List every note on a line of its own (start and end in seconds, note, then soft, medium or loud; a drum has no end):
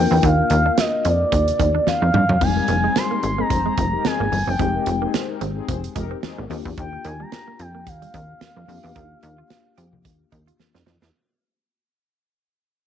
0.00 2.10 A#3 medium
0.00 2.10 D4 medium
0.00 2.10 F4 medium
0.00 2.11 A#4 medium
0.00 0.26 G5 loud
0.11 0.20 E2 loud
0.11 0.18 C4 medium
0.23 0.43 D#2 loud
0.23 0.32 D#4 medium
0.23 0.81 F5 loud
0.23 kick loud
0.23 closed hi-hat medium
0.50 0.70 D#2 loud
0.50 muted clean electric guitar stroke soft
0.50 closed hi-hat medium
0.50 muted conga soft
0.66 0.72 D4 medium
0.78 1.08 D#5 medium
0.78 snare loud
0.78 closed hi-hat loud
0.78 high conga medium
1.05 1.25 F2 medium
1.05 1.14 C4 medium
1.05 1.88 D5 loud
1.05 closed hi-hat medium
1.32 1.52 D#2 loud
1.32 muted clean electric guitar stroke soft
1.32 kick loud
1.32 closed hi-hat medium
1.32 muted conga medium
1.48 closed hi-hat medium
1.59 1.79 D#2 medium
1.59 1.68 A#3 medium
1.59 kick medium
1.59 closed hi-hat medium
1.59 muted conga medium
1.75 1.81 D4 medium
1.87 2.44 F5 loud
1.87 muted clean electric guitar stroke soft
1.87 snare medium
1.87 high conga medium
2.02 2.11 F2 medium
2.02 2.09 D#4 medium
2.14 2.25 G2 loud
2.14 2.23 D#4 medium
2.14 mid tom loud
2.14 high conga medium
2.29 2.38 F#2 loud
2.29 floor tom loud
2.40 2.61 F1 loud
2.40 4.56 G3 medium
2.40 4.55 G#3 medium
2.40 4.55 C4 medium
2.40 4.56 D#4 medium
2.40 2.99 G#5 loud
2.40 kick loud
2.40 splash medium
2.56 2.66 D#4 medium
2.56 2.66 G4 medium
2.56 2.66 A#4 medium
2.56 muted clean electric guitar stroke soft
2.68 2.88 F1 loud
2.68 2.77 A#3 medium
2.68 closed hi-hat medium
2.84 2.91 G#3 medium
2.84 2.93 C4 medium
2.84 2.93 D#4 medium
2.84 2.93 G#4 medium
2.96 3.08 C4 medium
2.96 3.08 G#4 loud
2.96 3.08 C5 loud
2.96 3.42 C6 loud
2.96 snare loud
2.96 closed hi-hat medium
2.96 high conga medium
3.11 3.18 A#3 medium
3.11 3.21 D#4 medium
3.11 3.21 G4 medium
3.11 3.21 A#4 loud
3.23 3.43 G#1 loud
3.23 muted clean electric guitar stroke soft
3.23 closed hi-hat medium
3.38 3.45 A#3 medium
3.38 3.48 C4 loud
3.38 3.48 D#4 loud
3.38 3.48 G#4 loud
3.38 4.08 A#5 loud
3.50 3.70 F1 medium
3.50 3.62 C4 medium
3.50 3.62 G#4 medium
3.50 3.62 C5 loud
3.50 muted clean electric guitar stroke soft
3.50 kick loud
3.50 closed hi-hat loud
3.50 muted conga medium
3.66 3.72 G#3 medium
3.66 3.75 C4 medium
3.66 3.75 G#4 medium
3.66 3.75 C5 loud
3.77 3.97 F1 medium
3.77 3.86 C4 medium
3.77 kick medium
3.77 closed hi-hat medium
3.77 muted conga soft
3.93 4.02 D#4 medium
3.93 4.02 G4 medium
3.93 4.02 A#4 loud
4.05 4.27 C4 loud
4.05 4.27 D#4 loud
4.05 4.27 G#4 loud
4.05 4.51 G#5 loud
4.05 snare loud
4.05 closed hi-hat medium
4.05 high conga medium
4.20 4.29 G#1 loud
4.20 4.27 A#3 medium
4.32 4.43 G1 medium
4.32 muted clean electric guitar stroke soft
4.32 open hi-hat medium
4.32 high conga loud
4.47 4.56 F#1 loud
4.47 4.54 C4 medium
4.47 5.03 G5 loud
4.59 4.79 F1 loud
4.59 6.46 G#3 medium
4.59 4.68 G#3 medium
4.59 6.46 C4 medium
4.59 6.47 D#4 medium
4.59 6.47 G4 medium
4.59 kick loud
4.59 closed hi-hat medium
4.75 4.84 D#4 medium
4.75 4.84 G4 medium
4.75 4.84 A#4 medium
4.86 5.06 F1 loud
4.86 muted clean electric guitar stroke soft
4.86 closed hi-hat medium
4.86 muted conga soft
5.02 5.09 A#3 medium
5.02 5.12 C4 medium
5.02 5.12 D#4 medium
5.02 5.12 G#4 loud
5.14 5.26 C4 medium
5.14 5.26 G#4 medium
5.14 5.26 C5 loud
5.14 snare loud
5.14 closed hi-hat loud
5.14 high conga medium
5.29 5.39 D#4 medium
5.29 5.39 G4 medium
5.29 5.39 A#4 medium
5.41 5.61 G#1 medium
5.41 5.50 C4 medium
5.41 closed hi-hat medium
5.56 5.66 C4 loud
5.56 5.66 D#4 loud
5.56 5.66 G#4 loud
5.68 5.88 F1 loud
5.68 5.81 C4 medium
5.68 5.81 G#4 medium
5.68 5.81 C5 medium
5.68 muted clean electric guitar stroke medium
5.68 kick loud
5.68 closed hi-hat loud
5.68 muted conga medium
5.84 closed hi-hat medium
5.95 6.16 F1 loud
5.95 6.04 G#3 medium
5.95 6.17 D#4 loud
5.95 6.17 G4 loud
5.95 6.17 A#4 loud
5.95 kick medium
5.95 closed hi-hat medium
5.95 muted conga soft
6.11 6.18 C4 medium
6.23 6.45 C4 loud
6.23 6.45 D#4 loud
6.23 6.45 G#4 loud
6.23 muted clean electric guitar stroke soft
6.23 snare loud
6.23 closed hi-hat medium
6.23 high conga medium
6.38 6.47 G#1 medium
6.38 6.45 A#3 medium
6.50 6.61 D#2 loud
6.50 8.64 A#3 medium
6.50 6.59 C4 medium
6.50 8.64 D4 medium
6.50 8.65 F4 medium
6.50 8.65 G4 medium
6.50 open hi-hat medium
6.50 high conga medium
6.65 6.74 E2 loud
6.65 kick medium
6.78 6.97 D#2 loud
6.78 7.08 G5 loud
6.78 kick loud
6.78 closed hi-hat medium
6.93 muted clean electric guitar stroke soft
7.05 7.25 D#2 loud
7.05 7.13 A#3 medium
7.05 7.23 G#5 loud
7.05 closed hi-hat medium
7.20 7.27 G3 medium
7.20 7.62 A#5 loud
7.32 snare loud
7.32 closed hi-hat loud
7.32 high conga medium
7.48 7.54 A#3 medium
7.59 7.88 F2 medium
7.59 7.90 G5 loud
7.59 muted clean electric guitar stroke soft
7.59 closed hi-hat medium
7.75 7.81 A#3 medium
7.87 8.06 D#2 loud
7.87 10.60 F5 loud
7.87 muted clean electric guitar stroke soft
7.87 kick loud
7.87 closed hi-hat loud
7.87 muted conga medium
8.02 8.09 G3 medium
8.02 closed hi-hat medium
8.14 8.34 D#2 loud
8.14 8.23 C4 medium
8.14 kick loud
8.14 closed hi-hat medium
8.14 muted conga medium
8.41 snare loud
8.41 closed hi-hat medium
8.41 high conga medium
8.57 8.65 F2 medium
8.57 8.63 A#3 medium
8.68 8.80 F2 loud
8.68 10.82 A#3 medium
8.68 10.83 D4 medium
8.68 10.83 F4 medium
8.68 10.83 G4 medium
8.68 muted clean electric guitar stroke soft
8.68 open hi-hat medium
8.68 high conga loud
8.84 8.93 E2 loud
8.84 8.90 G4 medium
8.96 9.16 D#2 loud
8.96 9.04 D#4 medium
8.96 kick loud
8.96 closed hi-hat medium
9.23 9.43 D#2 loud
9.23 muted clean electric guitar stroke soft
9.23 closed hi-hat medium
9.38 9.45 F4 medium
9.50 snare loud
9.50 closed hi-hat loud
9.50 high conga medium
9.78 10.07 F2 medium
9.78 9.86 G4 medium
9.78 closed hi-hat medium
9.93 low conga medium
10.05 10.25 D#2 loud
10.05 muted clean electric guitar stroke soft
10.05 kick loud
10.05 closed hi-hat loud
10.05 muted conga medium
10.32 10.52 D#2 loud
10.32 10.41 D#4 medium
10.32 kick loud
10.32 closed hi-hat medium
10.32 muted conga medium
10.47 10.54 F4 medium
10.47 closed hi-hat medium
10.60 muted clean electric guitar stroke soft
10.60 snare medium
10.60 high conga medium
10.75 10.84 F2 medium
10.75 10.81 D4 medium
10.75 snare medium
10.86 10.98 F2 loud
10.86 10.95 D#4 medium
10.86 snare loud
10.86 high conga medium
11.02 11.11 E2 loud
11.02 snare loud